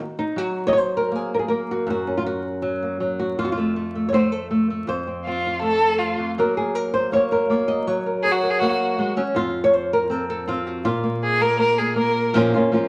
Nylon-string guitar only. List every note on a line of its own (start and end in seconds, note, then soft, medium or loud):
0.19 0.38 D#4 medium
0.36 1.84 F#3 medium
0.36 1.03 F#4 loud
0.67 0.69 C#5 medium
0.67 0.71 D#5 medium
0.73 0.78 C#5 loud
0.78 1.32 C5 loud
0.97 1.16 A#4 medium
1.11 1.48 A#3 medium
1.16 1.32 G#4 medium
1.34 1.39 A#4 medium
1.39 1.45 G#4 medium
1.48 1.85 A#3 medium
1.48 2.07 A#4 medium
1.71 1.89 F#4 medium
1.87 3.35 F#2 medium
1.87 2.17 F#4 medium
2.07 3.36 C#4 soft
2.17 2.26 F4 medium
2.26 3.01 F#4 medium
2.62 2.99 F#3 medium
2.83 3.36 A#3 soft
3.00 3.35 F#3 medium
3.20 3.38 F#4 medium
3.39 4.86 F2 medium
3.39 3.51 F4 medium
3.45 3.51 F#4 medium
3.52 4.08 F4 medium
3.57 3.76 A3 soft
3.76 3.95 A3 soft
3.95 4.12 A3 soft
4.09 4.49 A3 medium
4.09 4.13 C#5 medium
4.14 4.32 C5 loud
4.32 4.88 A4 medium
4.51 4.69 A3 medium
4.70 4.86 A3 soft
4.87 6.17 F2 medium
4.87 5.44 C5 loud
5.07 5.25 C4 soft
5.27 6.38 C4 soft
5.47 6.39 F4 soft
5.62 6.35 A3 medium
6.18 6.37 F2 medium
6.38 7.85 F#3 medium
6.38 7.12 A#3 soft
6.38 7.86 F#4 soft
6.38 6.57 A#4 medium
6.57 6.75 G#4 medium
6.75 7.31 A#4 medium
6.94 7.12 C5 medium
7.12 7.49 A#3 medium
7.12 7.49 C#5 medium
7.32 7.87 A#4 medium
7.50 7.85 A#3 medium
7.50 7.67 C#5 loud
7.68 7.87 D#5 medium
7.87 9.15 F#3 medium
7.87 8.24 C#5 medium
8.06 8.42 A#4 soft
8.25 9.34 C#5 soft
8.43 9.34 A#4 soft
8.61 8.98 A#3 medium
8.98 9.16 G#3 medium
9.16 9.20 F#3 medium
9.16 9.36 C#4 medium
9.34 10.85 F2 medium
9.34 10.01 F4 loud
9.64 9.73 C#5 loud
9.73 9.92 C5 loud
9.93 10.11 A#4 medium
10.10 10.46 C4 medium
10.10 10.29 A4 loud
10.30 10.86 A4 medium
10.47 10.83 C4 medium
10.47 10.83 F4 medium
10.66 10.85 F#4 medium
10.85 12.33 A#2 medium
10.85 12.34 F4 loud
11.03 11.40 A#3 soft
11.42 11.58 A#3 soft
11.60 11.79 A#3 medium
11.80 11.95 A#3 soft
11.96 12.32 A#3 medium
12.34 12.52 A#2 medium
12.34 12.53 F3 medium
12.34 12.53 A#3 medium
12.34 12.53 C#4 loud
12.34 12.53 F4 loud
12.54 12.71 A#3 medium
12.54 12.72 C#4 medium
12.54 12.72 F4 medium
12.72 12.88 F3 medium
12.72 12.88 A#3 medium
12.72 12.88 C#4 medium
12.72 12.88 F4 medium